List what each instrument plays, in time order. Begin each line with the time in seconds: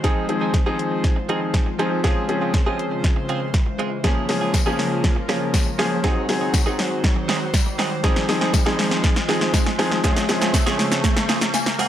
Already playing: analog synth pad D#3 G#3 C5, riser
0.04 grand piano F3 C4 D#4 G#4, clean electric guitar F3 C4 D#4 G#4, analog synth pad F4, kick, snare, closed hi-hat
0.29 grand piano F3 C4 D#4 G#4, closed hi-hat
0.41 clean electric guitar F3 C4 D#4 G#4
0.54 kick, snare, closed hi-hat
0.66 grand piano F3 C4 D#4 G#4, clean electric guitar F3 C4 D#4 G#4
0.79 muted clean electric guitar stroke, closed hi-hat
0.91 muted clean electric guitar stroke
1.04 kick, snare, closed hi-hat
1.16 muted clean electric guitar stroke
1.29 grand piano F3 C4 D#4 G#4, clean electric guitar F3 C4 D#4 G#4, closed hi-hat
1.41 muted clean electric guitar stroke
1.54 kick, snare, closed hi-hat
1.66 muted clean electric guitar stroke
1.79 grand piano F3 C4 D#4 G#4, clean electric guitar F3 C4 D#4 G#4, closed hi-hat
1.92 muted clean electric guitar stroke
2.04 analog synth pad C#3 C5, grand piano F3 C4 C#4 G#4, clean electric guitar G#3 C4 F4 G#4, kick, snare, closed hi-hat
2.29 grand piano F3 C4 C#4 G#4, closed hi-hat
2.41 clean electric guitar G#3 C4 F4 G#4
2.54 muted clean electric guitar stroke, kick, snare, closed hi-hat
2.66 grand piano F3 C4 C#4 G#4, clean electric guitar G#3 C4 F4 G#4
2.79 muted clean electric guitar stroke, closed hi-hat
2.92 muted clean electric guitar stroke
3.04 kick, snare, closed hi-hat
3.16 muted clean electric guitar stroke
3.29 clean electric guitar G#3 C4 F4 G#4, closed hi-hat
3.42 muted clean electric guitar stroke
3.54 kick, snare, closed hi-hat
3.66 muted clean electric guitar stroke
3.79 clean electric guitar G#3 C4 F4 G#4, closed hi-hat
3.92 muted clean electric guitar stroke
4.04 analog synth pad C#3 F4 A#4, grand piano F3 A#3 C#4 G#4, clean electric guitar G#3 C#4 F4 G#4, kick, snare, closed hi-hat
4.29 grand piano F3 A#3 C#4 G#4, muted clean electric guitar stroke, snare, open hi-hat
4.41 clean electric guitar G#3 C#4 F4 G#4
4.54 kick, snare, closed hi-hat, tambourine
4.66 grand piano F3 A#3 C#4 G#4, clean electric guitar G#3 C#4 F4 G#4
4.79 muted clean electric guitar stroke, snare, open hi-hat
4.91 muted clean electric guitar stroke
5.04 kick, snare, closed hi-hat
5.16 muted clean electric guitar stroke
5.29 grand piano F3 A#3 C#4 G#4, clean electric guitar G#3 C#4 F4 G#4, snare, open hi-hat
5.41 muted clean electric guitar stroke
5.54 kick, snare, closed hi-hat, tambourine
5.66 muted clean electric guitar stroke
5.79 grand piano F3 A#3 C#4 G#4, clean electric guitar G#3 C#4 F4 G#4, snare, open hi-hat
5.91 muted clean electric guitar stroke
6.04 analog synth pad D#3 F#4 C5, clean electric guitar F#3 C4 D#4 G#4, grand piano F#3 C4 D#4 G#4, kick, snare, closed hi-hat
6.29 grand piano F#3 C4 D#4 G#4, muted clean electric guitar stroke, snare, open hi-hat
6.41 clean electric guitar F#3 C4 D#4 G#4
6.54 muted clean electric guitar stroke, kick, snare, closed hi-hat, tambourine
6.66 grand piano F#3 C4 D#4 G#4, clean electric guitar F#3 C4 D#4 G#4
6.79 muted clean electric guitar stroke, snare, open hi-hat
6.91 muted clean electric guitar stroke
7.04 kick, snare, closed hi-hat
7.16 muted clean electric guitar stroke
7.28 clean electric guitar F#3 C4 D#4 G#4, snare, open hi-hat
7.41 muted clean electric guitar stroke
7.54 kick, snare, closed hi-hat, tambourine
7.66 muted clean electric guitar stroke
7.78 clean electric guitar F#3 C4 D#4 G#4, snare, open hi-hat
7.91 muted clean electric guitar stroke
8.03 grand piano F3 C4 D#4 G#4, clean electric guitar G#3 C4 D#4 G#4, analog synth pad G#3 F4, kick, snare, closed hi-hat
8.16 snare
8.29 grand piano F3 C4 D#4 G#4, muted clean electric guitar stroke, snare, open hi-hat
8.41 clean electric guitar G#3 C4 D#4 G#4, snare
8.54 muted clean electric guitar stroke, kick, snare, closed hi-hat, tambourine
8.66 grand piano F3 C4 D#4 G#4, clean electric guitar G#3 C4 D#4 G#4, snare
8.79 muted clean electric guitar stroke, snare, open hi-hat
8.91 muted clean electric guitar stroke, snare
9.04 kick, snare, closed hi-hat
9.16 muted clean electric guitar stroke, snare
9.29 grand piano F3 C4 D#4 G#4, clean electric guitar G#3 C4 D#4 G#4, snare, open hi-hat
9.41 muted clean electric guitar stroke, snare
9.54 kick, snare, closed hi-hat, tambourine
9.66 muted clean electric guitar stroke, snare
9.79 grand piano F3 C4 D#4 G#4, clean electric guitar G#3 C4 D#4 G#4, snare, open hi-hat
9.91 muted clean electric guitar stroke, snare
10.04 analog synth pad C#3 G#3, grand piano F3 C4 C#4 G#4, clean electric guitar G#3 C4 F4 G#4, kick, snare, closed hi-hat, shaker
10.16 snare, shaker
10.29 grand piano F3 C4 C#4 G#4, muted clean electric guitar stroke, snare, open hi-hat, shaker
10.41 clean electric guitar G#3 C4 F4 G#4, snare, shaker
10.54 kick, snare, closed hi-hat, tambourine, shaker
10.66 grand piano F3 C4 C#4 G#4, clean electric guitar G#3 C4 F4 G#4, snare, shaker
10.79 muted clean electric guitar stroke, snare, open hi-hat, shaker
10.91 muted clean electric guitar stroke, snare, shaker
11.04 kick, snare, closed hi-hat, shaker
11.16 muted clean electric guitar stroke, snare, shaker
11.29 clean electric guitar G#3 C4 F4 G#4, snare, open hi-hat, shaker
11.41 muted clean electric guitar stroke, snare, shaker
11.54 grand piano G#5, muted clean electric guitar stroke, snare, closed hi-hat, tambourine, shaker
11.66 muted clean electric guitar stroke, snare, shaker
11.79 clean electric guitar G#3 C4 F4 G#4, grand piano F#5, open hi-hat, shaker